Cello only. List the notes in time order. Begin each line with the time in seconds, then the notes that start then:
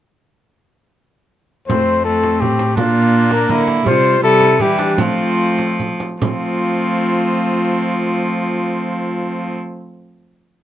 1.70 F2
2.42 A2
2.79 A#2
3.50 D3
3.86 C3
4.23 C3
4.60 E3
4.99 F3
6.22 F3